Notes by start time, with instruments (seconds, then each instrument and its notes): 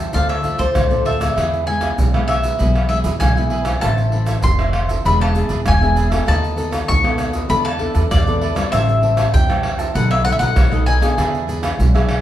Already playing: nylon-string guitar E3, mandolin G5, cavaquinho A5
0.00 cavaquinho C5 E5
0.13 upright bass D2, nylon-string guitar D3 A3 C4 F4, cavaquinho F4 A4 C5 D5, mandolin F5, pandeiro, shaker, surdo
0.29 mandolin E5, pandeiro, tamborim, shaker
0.43 nylon-string guitar A3 C4 F4, cavaquinho F4 A4 C5 D5, pandeiro, shaker, surdo
0.59 upright bass D2, cavaquinho F4 A4 C5 D5, mandolin C5, pandeiro, shaker, surdo
0.74 upright bass D2, nylon-string guitar A2, pandeiro, tamborim, shaker, surdo
0.90 nylon-string guitar A3 C4 F4, cavaquinho A4 C5 D5, pandeiro, shaker
1.05 cavaquinho F4 A4 C5 D5, mandolin E5, pandeiro
1.20 nylon-string guitar G#3 B3 E4, cavaquinho A4 C5 D5, pandeiro, tamborim, shaker, surdo
1.36 upright bass E2, nylon-string guitar E3, cavaquinho E4 G#4 B4 E5, pandeiro, tamborim, shaker, surdo
1.53 pandeiro, shaker
1.66 nylon-string guitar G#3 B3 E4, cavaquinho E4 G#4 B4 E5, mandolin G#5, pandeiro
1.81 cavaquinho E4 G#4 B4 E5, pandeiro, tamborim, shaker, surdo
1.98 upright bass B1, nylon-string guitar B2, pandeiro, shaker, surdo
2.14 nylon-string guitar G#3 B3 E4, cavaquinho G#4 B4 E5, pandeiro, tamborim, shaker
2.28 mandolin E5, pandeiro, tamborim
2.42 cavaquinho G#4 B4 E5, pandeiro, shaker, surdo
2.58 upright bass B1, nylon-string guitar E3 G#3 B3 E4, cavaquinho E4 G#4 B4 E5, pandeiro, shaker, surdo
2.76 pandeiro, tamborim, shaker
2.89 nylon-string guitar G#3 B3 E4, cavaquinho E4 G#4 B4 E5, mandolin E5, pandeiro
3.04 upright bass E2, cavaquinho E4 G#4 B4 E5, pandeiro, shaker, surdo
3.20 upright bass B1, nylon-string guitar B2, mandolin G#5, pandeiro, tamborim, shaker, surdo
3.37 nylon-string guitar G#3 B3 E4, cavaquinho G#4 B4 E5, pandeiro, shaker
3.50 cavaquinho E4 G#4 B4 E5, pandeiro
3.65 nylon-string guitar E3 C4 E4, cavaquinho G#4 B4 E5, pandeiro, tamborim, shaker, surdo
3.81 upright bass A1, nylon-string guitar A2, cavaquinho E4 A4 C5 E5, mandolin A5, pandeiro, tamborim, shaker, surdo
3.98 pandeiro, shaker
4.12 nylon-string guitar E3 C4 E4, cavaquinho E4 A4 C5 E5, pandeiro
4.26 cavaquinho E4 A4 C5 E5, pandeiro, tamborim, shaker, surdo
4.42 upright bass F1, nylon-string guitar E3, mandolin C6, pandeiro, shaker, surdo
4.59 nylon-string guitar E3 C4 E4, cavaquinho A4 C5 E5, pandeiro, tamborim, shaker
4.73 pandeiro, tamborim
4.88 cavaquinho A4 C5 E5, pandeiro, shaker, surdo
5.05 upright bass E1, nylon-string guitar E3 B3 D4 G#4, cavaquinho D4 G#4 B4 E5, mandolin B5, pandeiro, shaker, surdo
5.21 mandolin A5, pandeiro, tamborim, shaker
5.35 nylon-string guitar B3 D4 G#4, cavaquinho D4 G#4 B4 E5, pandeiro, shaker
5.49 upright bass E1, cavaquinho D4 G#4 B4 E5, pandeiro, shaker, surdo
5.66 upright bass E1, nylon-string guitar B2, mandolin G#5, pandeiro, tamborim, shaker, surdo
5.81 nylon-string guitar B3 D4 G#4, cavaquinho G#4 B4 E5, pandeiro, shaker
5.96 cavaquinho D4 G#4 B4 E5, pandeiro, shaker
6.10 nylon-string guitar B3 F#4 A4, cavaquinho G#4 B4 E5, pandeiro, tamborim, shaker, surdo
6.26 upright bass D#2, nylon-string guitar D#3, cavaquinho D#4 A4 B4 D#5, mandolin A5, pandeiro, tamborim, shaker, surdo
6.44 pandeiro, shaker
6.56 nylon-string guitar B3 F#4 A4, cavaquinho D#4 A4 B4 D#5, pandeiro, shaker
6.71 cavaquinho D#4 A4 B4 D#5, pandeiro, tamborim, shaker, surdo
6.88 upright bass D#2, nylon-string guitar D#3, mandolin C#6, pandeiro, shaker, surdo
7.04 nylon-string guitar B3 F#4 A4, cavaquinho A4 B4 D#5, pandeiro, tamborim, shaker
7.18 pandeiro, tamborim, shaker
7.33 cavaquinho A4 B4 D#5, pandeiro, shaker, surdo
7.49 upright bass E2, nylon-string guitar E3 B3 D4 A4, cavaquinho E4 A4 B4 D5, mandolin B5, pandeiro, shaker, surdo
7.65 mandolin A5, pandeiro, tamborim, shaker
7.79 nylon-string guitar B3 D4 A4, cavaquinho E4 A4 B4 D5, pandeiro, surdo
7.95 upright bass E2, cavaquinho E4 A4 B4 D5, pandeiro, shaker, surdo
8.11 upright bass E2, nylon-string guitar B2, mandolin D5, pandeiro, tamborim, shaker, surdo
8.26 nylon-string guitar B3 D4 A4, cavaquinho A4 B4 D5, pandeiro, shaker
8.41 cavaquinho E4 A4 B4 D5, pandeiro
8.55 nylon-string guitar G3 C4 E4, cavaquinho A4 B4 D5, pandeiro, tamborim, shaker, surdo
8.72 upright bass A1, nylon-string guitar A2, cavaquinho G4 C5 E5 A5, mandolin E5, pandeiro, tamborim, shaker, surdo
8.89 pandeiro, shaker
9.01 nylon-string guitar G3 C4 E4, cavaquinho G4 C5 E5 A5, pandeiro
9.17 cavaquinho G4 C5 E5 A5, pandeiro, tamborim, shaker, surdo
9.32 upright bass E2, nylon-string guitar E3, mandolin G5, pandeiro, shaker, surdo
9.48 nylon-string guitar G3 C4 E4, cavaquinho C5 E5 A5, pandeiro, tamborim, shaker
9.63 pandeiro, tamborim
9.78 cavaquinho C5 E5 A5, pandeiro, shaker, surdo
9.94 upright bass B1, nylon-string guitar B2 F#3 A3 D#4, cavaquinho D#4 A4 B4 D#5, mandolin F#5, pandeiro, shaker, surdo
10.11 mandolin E5, pandeiro, tamborim, shaker
10.24 nylon-string guitar F#3 A3 D#4, cavaquinho D#4 A4 B4 D#5, mandolin F#5, pandeiro
10.32 mandolin E5
10.39 upright bass B1, cavaquinho D#4 A4 B4 D#5, mandolin F#5, pandeiro, shaker, surdo
10.56 upright bass B1, nylon-string guitar F#2, pandeiro, tamborim, shaker, surdo
10.71 nylon-string guitar F#3 A3 D#4, cavaquinho A4 B4 D#5, pandeiro, shaker
10.86 cavaquinho D#4 A4 B4 D#5, mandolin G#5, pandeiro
11.01 nylon-string guitar B3 D4 G#4, cavaquinho A4 B4 D#5, pandeiro, tamborim, shaker, surdo
11.17 upright bass E2, nylon-string guitar E3, cavaquinho D4 G#4 B4 E5, pandeiro, tamborim, shaker, surdo
11.35 pandeiro, shaker
11.47 nylon-string guitar B3 D4 G#4, cavaquinho D4 G#4 B4 E5, pandeiro, shaker
11.63 cavaquinho D4 G#4 B4 E5, pandeiro, tamborim, shaker, surdo
11.79 upright bass B1, nylon-string guitar B2, pandeiro, shaker, surdo
11.94 nylon-string guitar B3 D4 G#4, cavaquinho G#4 B4 E5, pandeiro, tamborim, shaker
12.09 pandeiro, tamborim